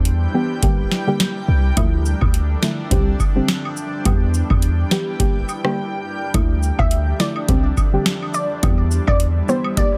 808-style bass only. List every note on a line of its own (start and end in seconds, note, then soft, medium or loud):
0.00 0.27 E2 medium
0.63 0.86 G1 loud
1.48 1.72 C2 loud
1.77 2.14 D2 loud
2.22 2.56 D2 medium
2.91 3.15 C2 loud
4.06 4.42 E2 loud
4.50 4.84 E2 medium
5.20 5.43 G1 loud
6.34 6.71 D2 loud
6.79 7.13 D2 medium
7.49 7.72 C2 loud
8.63 9.00 E2 loud
9.08 9.42 E2 medium
9.77 9.98 G1 loud